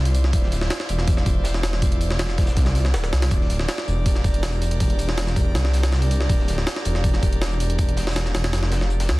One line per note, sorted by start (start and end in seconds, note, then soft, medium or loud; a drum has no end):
0.00 0.32 C2 loud
0.00 3.28 E4 medium
0.00 3.28 F4 medium
0.00 3.28 C5 medium
0.00 9.20 D5 medium
0.05 open hi-hat medium
0.14 closed hi-hat medium
0.14 open hi-hat medium
0.24 snare soft
0.33 0.69 D1 loud
0.33 kick loud
0.33 closed hi-hat medium
0.33 open hi-hat medium
0.43 snare soft
0.52 snare soft
0.52 closed hi-hat medium
0.52 open hi-hat medium
0.61 snare soft
0.70 snare loud
0.70 closed hi-hat loud
0.70 open hi-hat medium
0.80 snare medium
0.89 2.37 E1 medium
0.89 closed hi-hat medium
0.89 open hi-hat medium
0.99 snare soft
1.08 kick loud
1.08 closed hi-hat medium
1.08 open hi-hat medium
1.17 snare soft
1.26 kick loud
1.26 closed hi-hat medium
1.26 open hi-hat medium
1.44 snare loud
1.44 closed hi-hat medium
1.44 open hi-hat medium
1.54 snare soft
1.54 closed hi-hat soft
1.63 snare loud
1.63 closed hi-hat medium
1.63 open hi-hat medium
1.73 snare medium
1.82 kick loud
1.82 closed hi-hat medium
1.82 open hi-hat medium
1.92 closed hi-hat soft
2.01 closed hi-hat medium
2.01 open hi-hat medium
2.10 snare medium
2.19 snare loud
2.19 closed hi-hat medium
2.19 open hi-hat loud
2.29 snare soft
2.29 closed hi-hat soft
2.38 2.56 E1 medium
2.38 kick loud
2.38 snare loud
2.38 closed hi-hat medium
2.38 open hi-hat medium
2.47 snare loud
2.47 closed hi-hat medium
2.57 2.96 C2 loud
2.57 kick loud
2.57 snare loud
2.57 closed hi-hat medium
2.57 open hi-hat medium
2.66 snare loud
2.66 snare medium
2.66 closed hi-hat medium
2.75 snare soft
2.75 closed hi-hat medium
2.75 open hi-hat medium
2.85 snare medium
2.85 closed hi-hat soft
2.94 3.11 D1 loud
2.94 snare loud
2.94 closed hi-hat medium
2.94 open hi-hat medium
3.04 snare medium
3.13 3.30 C2 loud
3.13 snare loud
3.13 closed hi-hat medium
3.13 open hi-hat medium
3.22 snare loud
3.22 open hi-hat medium
3.31 3.67 D1 loud
3.31 9.20 D4 medium
3.31 9.20 G4 medium
3.31 9.20 A#4 medium
3.31 kick loud
3.31 closed hi-hat medium
3.31 open hi-hat medium
3.41 snare soft
3.50 snare soft
3.50 closed hi-hat medium
3.50 open hi-hat medium
3.59 snare soft
3.68 snare loud
3.68 closed hi-hat medium
3.68 open hi-hat loud
3.78 snare medium
3.87 5.35 E1 medium
3.87 closed hi-hat medium
4.06 kick loud
4.06 closed hi-hat medium
4.06 open hi-hat medium
4.15 snare soft
4.24 kick loud
4.24 closed hi-hat medium
4.24 open hi-hat medium
4.34 closed hi-hat soft
4.43 snare loud
4.43 closed hi-hat medium
4.43 open hi-hat medium
4.52 closed hi-hat soft
4.62 closed hi-hat medium
4.62 open hi-hat medium
4.71 closed hi-hat soft
4.80 kick loud
4.80 closed hi-hat medium
4.80 open hi-hat medium
4.90 closed hi-hat soft
4.99 closed hi-hat medium
4.99 open hi-hat medium
5.09 snare medium
5.17 snare loud
5.17 closed hi-hat medium
5.17 open hi-hat medium
5.27 snare soft
5.27 closed hi-hat soft
5.36 5.55 E1 loud
5.36 kick loud
5.36 closed hi-hat medium
5.36 open hi-hat medium
5.55 6.28 C2 loud
5.55 snare loud
5.55 closed hi-hat medium
5.55 open hi-hat medium
5.65 snare soft
5.65 snare medium
5.73 snare medium
5.73 closed hi-hat medium
5.73 open hi-hat medium
5.83 snare loud
5.83 closed hi-hat soft
5.83 open hi-hat medium
5.92 snare medium
5.92 snare loud
5.92 closed hi-hat medium
6.02 open hi-hat medium
6.11 closed hi-hat medium
6.11 open hi-hat medium
6.21 snare soft
6.29 6.65 D1 loud
6.29 kick loud
6.29 closed hi-hat medium
6.29 open hi-hat medium
6.39 snare soft
6.48 snare soft
6.48 closed hi-hat medium
6.48 open hi-hat medium
6.58 snare soft
6.67 snare loud
6.67 closed hi-hat medium
6.67 open hi-hat medium
6.76 snare medium
6.85 8.33 E1 medium
6.85 closed hi-hat medium
6.85 open hi-hat medium
6.95 snare soft
7.04 kick loud
7.04 closed hi-hat medium
7.04 open hi-hat medium
7.14 snare soft
7.23 kick loud
7.23 closed hi-hat medium
7.23 open hi-hat medium
7.33 closed hi-hat soft
7.42 snare loud
7.42 closed hi-hat loud
7.42 open hi-hat medium
7.51 closed hi-hat soft
7.60 closed hi-hat medium
7.60 open hi-hat medium
7.70 closed hi-hat soft
7.78 kick loud
7.78 closed hi-hat medium
7.78 open hi-hat medium
7.89 closed hi-hat soft
7.97 snare loud
7.97 closed hi-hat medium
7.97 open hi-hat medium
8.07 snare medium
8.07 closed hi-hat medium
8.11 snare medium
8.11 closed hi-hat medium
8.16 snare loud
8.16 closed hi-hat medium
8.16 open hi-hat medium
8.25 snare soft
8.25 closed hi-hat soft
8.34 8.53 E1 medium
8.34 snare loud
8.34 closed hi-hat medium
8.34 open hi-hat medium
8.44 snare loud
8.44 open hi-hat medium
8.53 9.11 F1 medium
8.53 snare loud
8.53 closed hi-hat medium
8.53 open hi-hat medium
8.63 snare medium
8.63 snare soft
8.72 snare loud
8.72 closed hi-hat medium
8.72 open hi-hat medium
8.81 snare soft
8.90 closed hi-hat medium
9.00 snare loud
9.00 closed hi-hat medium
9.00 open hi-hat medium
9.09 9.20 D2 medium
9.09 snare loud
9.09 open hi-hat medium